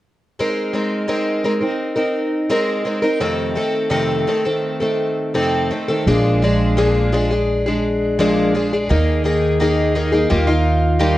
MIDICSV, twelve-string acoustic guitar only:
0, 0, Header, 1, 2, 480
1, 0, Start_track
1, 0, Key_signature, -4, "major"
1, 0, Tempo, 709220
1, 256, Time_signature, 4, 2, 24, 8
1, 7566, End_track
2, 0, Start_track
2, 0, Title_t, "Twelve-string acoustic guitar"
2, 0, Program_c, 0, 25
2, 266, Note_on_c, 0, 56, 57
2, 268, Note_on_c, 0, 60, 60
2, 274, Note_on_c, 0, 63, 58
2, 274, Note_on_c, 0, 70, 69
2, 489, Note_off_c, 0, 56, 0
2, 496, Note_off_c, 0, 60, 0
2, 497, Note_on_c, 0, 56, 45
2, 500, Note_off_c, 0, 63, 0
2, 503, Note_off_c, 0, 70, 0
2, 504, Note_on_c, 0, 60, 49
2, 508, Note_on_c, 0, 63, 44
2, 511, Note_on_c, 0, 70, 49
2, 722, Note_off_c, 0, 56, 0
2, 728, Note_off_c, 0, 60, 0
2, 730, Note_off_c, 0, 63, 0
2, 730, Note_off_c, 0, 70, 0
2, 730, Note_on_c, 0, 56, 58
2, 736, Note_on_c, 0, 60, 66
2, 738, Note_on_c, 0, 63, 58
2, 738, Note_on_c, 0, 70, 70
2, 969, Note_off_c, 0, 56, 0
2, 972, Note_off_c, 0, 60, 0
2, 974, Note_off_c, 0, 63, 0
2, 977, Note_on_c, 0, 56, 46
2, 978, Note_off_c, 0, 70, 0
2, 980, Note_on_c, 0, 60, 48
2, 982, Note_on_c, 0, 63, 59
2, 986, Note_on_c, 0, 70, 55
2, 1081, Note_off_c, 0, 70, 0
2, 1087, Note_off_c, 0, 63, 0
2, 1089, Note_on_c, 0, 70, 40
2, 1094, Note_off_c, 0, 60, 0
2, 1096, Note_on_c, 0, 63, 38
2, 1097, Note_off_c, 0, 56, 0
2, 1102, Note_on_c, 0, 60, 32
2, 1319, Note_off_c, 0, 70, 0
2, 1323, Note_off_c, 0, 63, 0
2, 1327, Note_on_c, 0, 70, 43
2, 1331, Note_off_c, 0, 60, 0
2, 1332, Note_on_c, 0, 63, 36
2, 1339, Note_on_c, 0, 60, 38
2, 1685, Note_off_c, 0, 60, 0
2, 1688, Note_off_c, 0, 63, 0
2, 1690, Note_on_c, 0, 56, 65
2, 1693, Note_off_c, 0, 70, 0
2, 1693, Note_on_c, 0, 60, 74
2, 1697, Note_on_c, 0, 63, 69
2, 1701, Note_on_c, 0, 70, 68
2, 1920, Note_off_c, 0, 56, 0
2, 1925, Note_off_c, 0, 60, 0
2, 1928, Note_on_c, 0, 56, 45
2, 1929, Note_off_c, 0, 63, 0
2, 1933, Note_off_c, 0, 70, 0
2, 1933, Note_on_c, 0, 60, 54
2, 1937, Note_on_c, 0, 63, 48
2, 1941, Note_on_c, 0, 70, 58
2, 2036, Note_off_c, 0, 70, 0
2, 2044, Note_on_c, 0, 70, 45
2, 2046, Note_off_c, 0, 63, 0
2, 2049, Note_off_c, 0, 60, 0
2, 2054, Note_off_c, 0, 56, 0
2, 2054, Note_on_c, 0, 63, 42
2, 2058, Note_on_c, 0, 60, 36
2, 2165, Note_off_c, 0, 60, 0
2, 2167, Note_on_c, 0, 48, 62
2, 2168, Note_on_c, 0, 41, 62
2, 2170, Note_off_c, 0, 63, 0
2, 2170, Note_on_c, 0, 51, 68
2, 2171, Note_on_c, 0, 57, 65
2, 2172, Note_off_c, 0, 70, 0
2, 2173, Note_on_c, 0, 60, 57
2, 2176, Note_on_c, 0, 69, 69
2, 2396, Note_off_c, 0, 51, 0
2, 2399, Note_off_c, 0, 57, 0
2, 2403, Note_off_c, 0, 60, 0
2, 2404, Note_on_c, 0, 51, 49
2, 2406, Note_off_c, 0, 69, 0
2, 2407, Note_on_c, 0, 57, 49
2, 2412, Note_on_c, 0, 60, 44
2, 2413, Note_off_c, 0, 48, 0
2, 2414, Note_off_c, 0, 41, 0
2, 2414, Note_on_c, 0, 69, 56
2, 2638, Note_off_c, 0, 51, 0
2, 2638, Note_on_c, 0, 41, 69
2, 2640, Note_off_c, 0, 57, 0
2, 2640, Note_off_c, 0, 69, 0
2, 2641, Note_on_c, 0, 48, 58
2, 2642, Note_off_c, 0, 60, 0
2, 2646, Note_on_c, 0, 51, 66
2, 2648, Note_on_c, 0, 57, 64
2, 2648, Note_on_c, 0, 69, 66
2, 2650, Note_on_c, 0, 60, 64
2, 2884, Note_off_c, 0, 51, 0
2, 2889, Note_off_c, 0, 57, 0
2, 2890, Note_off_c, 0, 41, 0
2, 2891, Note_off_c, 0, 48, 0
2, 2891, Note_off_c, 0, 60, 0
2, 2892, Note_on_c, 0, 51, 52
2, 2895, Note_off_c, 0, 69, 0
2, 2897, Note_on_c, 0, 57, 53
2, 2900, Note_on_c, 0, 60, 55
2, 2904, Note_on_c, 0, 69, 58
2, 3005, Note_off_c, 0, 69, 0
2, 3009, Note_off_c, 0, 60, 0
2, 3013, Note_off_c, 0, 57, 0
2, 3013, Note_on_c, 0, 69, 42
2, 3015, Note_off_c, 0, 51, 0
2, 3017, Note_on_c, 0, 60, 42
2, 3021, Note_on_c, 0, 57, 38
2, 3023, Note_on_c, 0, 51, 36
2, 3243, Note_off_c, 0, 69, 0
2, 3251, Note_off_c, 0, 60, 0
2, 3251, Note_on_c, 0, 69, 43
2, 3258, Note_off_c, 0, 51, 0
2, 3258, Note_off_c, 0, 57, 0
2, 3259, Note_on_c, 0, 60, 37
2, 3266, Note_on_c, 0, 51, 37
2, 3266, Note_on_c, 0, 57, 40
2, 3610, Note_off_c, 0, 51, 0
2, 3611, Note_off_c, 0, 57, 0
2, 3613, Note_off_c, 0, 60, 0
2, 3613, Note_off_c, 0, 69, 0
2, 3615, Note_on_c, 0, 41, 71
2, 3618, Note_on_c, 0, 51, 67
2, 3619, Note_on_c, 0, 48, 69
2, 3620, Note_on_c, 0, 57, 70
2, 3621, Note_on_c, 0, 60, 80
2, 3621, Note_on_c, 0, 69, 69
2, 3854, Note_off_c, 0, 51, 0
2, 3857, Note_off_c, 0, 57, 0
2, 3858, Note_off_c, 0, 41, 0
2, 3860, Note_off_c, 0, 48, 0
2, 3861, Note_off_c, 0, 60, 0
2, 3861, Note_off_c, 0, 69, 0
2, 3862, Note_on_c, 0, 51, 49
2, 3865, Note_on_c, 0, 57, 45
2, 3869, Note_on_c, 0, 60, 51
2, 3878, Note_on_c, 0, 69, 49
2, 3973, Note_off_c, 0, 69, 0
2, 3979, Note_off_c, 0, 60, 0
2, 3982, Note_off_c, 0, 51, 0
2, 3982, Note_on_c, 0, 69, 46
2, 3983, Note_off_c, 0, 57, 0
2, 3987, Note_on_c, 0, 60, 38
2, 3994, Note_on_c, 0, 57, 42
2, 3997, Note_on_c, 0, 51, 35
2, 4102, Note_off_c, 0, 69, 0
2, 4105, Note_off_c, 0, 60, 0
2, 4107, Note_off_c, 0, 51, 0
2, 4108, Note_off_c, 0, 57, 0
2, 4109, Note_on_c, 0, 46, 64
2, 4109, Note_on_c, 0, 53, 58
2, 4112, Note_on_c, 0, 56, 61
2, 4113, Note_on_c, 0, 62, 69
2, 4116, Note_on_c, 0, 68, 66
2, 4338, Note_off_c, 0, 53, 0
2, 4346, Note_off_c, 0, 46, 0
2, 4346, Note_on_c, 0, 53, 50
2, 4347, Note_off_c, 0, 56, 0
2, 4347, Note_off_c, 0, 62, 0
2, 4349, Note_off_c, 0, 68, 0
2, 4354, Note_on_c, 0, 56, 59
2, 4358, Note_on_c, 0, 62, 57
2, 4362, Note_on_c, 0, 68, 56
2, 4577, Note_off_c, 0, 56, 0
2, 4579, Note_off_c, 0, 53, 0
2, 4580, Note_on_c, 0, 46, 67
2, 4581, Note_off_c, 0, 62, 0
2, 4582, Note_off_c, 0, 68, 0
2, 4585, Note_on_c, 0, 56, 73
2, 4587, Note_on_c, 0, 53, 66
2, 4589, Note_on_c, 0, 62, 76
2, 4591, Note_on_c, 0, 68, 71
2, 4813, Note_off_c, 0, 53, 0
2, 4818, Note_off_c, 0, 56, 0
2, 4821, Note_off_c, 0, 46, 0
2, 4821, Note_on_c, 0, 53, 54
2, 4824, Note_off_c, 0, 68, 0
2, 4826, Note_off_c, 0, 62, 0
2, 4826, Note_on_c, 0, 56, 51
2, 4832, Note_on_c, 0, 62, 60
2, 4832, Note_on_c, 0, 68, 59
2, 4939, Note_off_c, 0, 68, 0
2, 4941, Note_off_c, 0, 53, 0
2, 4944, Note_off_c, 0, 56, 0
2, 4947, Note_off_c, 0, 62, 0
2, 4947, Note_on_c, 0, 68, 47
2, 4955, Note_on_c, 0, 62, 38
2, 4958, Note_on_c, 0, 56, 36
2, 5176, Note_off_c, 0, 68, 0
2, 5184, Note_on_c, 0, 68, 42
2, 5188, Note_off_c, 0, 62, 0
2, 5190, Note_off_c, 0, 56, 0
2, 5195, Note_on_c, 0, 62, 45
2, 5201, Note_on_c, 0, 56, 40
2, 5541, Note_off_c, 0, 56, 0
2, 5542, Note_on_c, 0, 46, 70
2, 5542, Note_on_c, 0, 53, 76
2, 5543, Note_off_c, 0, 62, 0
2, 5543, Note_off_c, 0, 68, 0
2, 5550, Note_on_c, 0, 56, 79
2, 5551, Note_on_c, 0, 62, 84
2, 5552, Note_on_c, 0, 68, 81
2, 5775, Note_off_c, 0, 53, 0
2, 5779, Note_off_c, 0, 56, 0
2, 5782, Note_off_c, 0, 46, 0
2, 5784, Note_off_c, 0, 62, 0
2, 5784, Note_on_c, 0, 53, 53
2, 5787, Note_off_c, 0, 68, 0
2, 5787, Note_on_c, 0, 56, 55
2, 5792, Note_on_c, 0, 62, 54
2, 5798, Note_on_c, 0, 68, 51
2, 5901, Note_off_c, 0, 68, 0
2, 5903, Note_off_c, 0, 53, 0
2, 5904, Note_off_c, 0, 56, 0
2, 5904, Note_off_c, 0, 62, 0
2, 5909, Note_on_c, 0, 68, 44
2, 5912, Note_on_c, 0, 62, 46
2, 5918, Note_on_c, 0, 56, 38
2, 6018, Note_off_c, 0, 68, 0
2, 6019, Note_on_c, 0, 51, 65
2, 6022, Note_off_c, 0, 56, 0
2, 6024, Note_on_c, 0, 58, 71
2, 6025, Note_off_c, 0, 62, 0
2, 6026, Note_on_c, 0, 68, 67
2, 6028, Note_on_c, 0, 63, 69
2, 6245, Note_off_c, 0, 51, 0
2, 6253, Note_off_c, 0, 58, 0
2, 6253, Note_on_c, 0, 51, 46
2, 6254, Note_off_c, 0, 63, 0
2, 6256, Note_off_c, 0, 68, 0
2, 6261, Note_on_c, 0, 58, 59
2, 6262, Note_on_c, 0, 63, 54
2, 6264, Note_on_c, 0, 68, 65
2, 6487, Note_off_c, 0, 51, 0
2, 6491, Note_off_c, 0, 58, 0
2, 6495, Note_on_c, 0, 51, 63
2, 6497, Note_off_c, 0, 63, 0
2, 6499, Note_on_c, 0, 58, 60
2, 6502, Note_off_c, 0, 68, 0
2, 6505, Note_on_c, 0, 63, 72
2, 6510, Note_on_c, 0, 68, 80
2, 6725, Note_off_c, 0, 51, 0
2, 6729, Note_off_c, 0, 58, 0
2, 6731, Note_off_c, 0, 63, 0
2, 6733, Note_on_c, 0, 51, 52
2, 6738, Note_on_c, 0, 58, 61
2, 6739, Note_off_c, 0, 68, 0
2, 6739, Note_on_c, 0, 63, 58
2, 6747, Note_on_c, 0, 68, 59
2, 6840, Note_off_c, 0, 68, 0
2, 6847, Note_off_c, 0, 63, 0
2, 6848, Note_on_c, 0, 68, 48
2, 6854, Note_off_c, 0, 58, 0
2, 6855, Note_on_c, 0, 63, 47
2, 6857, Note_off_c, 0, 51, 0
2, 6863, Note_on_c, 0, 58, 36
2, 6962, Note_off_c, 0, 58, 0
2, 6964, Note_off_c, 0, 63, 0
2, 6969, Note_on_c, 0, 55, 70
2, 6970, Note_on_c, 0, 51, 54
2, 6970, Note_on_c, 0, 58, 71
2, 6973, Note_on_c, 0, 63, 66
2, 6974, Note_off_c, 0, 68, 0
2, 6978, Note_on_c, 0, 65, 65
2, 7078, Note_off_c, 0, 65, 0
2, 7085, Note_off_c, 0, 63, 0
2, 7086, Note_on_c, 0, 65, 55
2, 7093, Note_on_c, 0, 63, 45
2, 7094, Note_off_c, 0, 51, 0
2, 7094, Note_off_c, 0, 55, 0
2, 7095, Note_off_c, 0, 58, 0
2, 7102, Note_on_c, 0, 58, 35
2, 7442, Note_off_c, 0, 58, 0
2, 7442, Note_off_c, 0, 63, 0
2, 7442, Note_on_c, 0, 51, 69
2, 7443, Note_off_c, 0, 65, 0
2, 7448, Note_on_c, 0, 55, 71
2, 7450, Note_on_c, 0, 58, 72
2, 7450, Note_on_c, 0, 63, 71
2, 7451, Note_on_c, 0, 65, 76
2, 7566, Note_off_c, 0, 51, 0
2, 7566, Note_off_c, 0, 55, 0
2, 7566, Note_off_c, 0, 58, 0
2, 7566, Note_off_c, 0, 63, 0
2, 7566, Note_off_c, 0, 65, 0
2, 7566, End_track
0, 0, End_of_file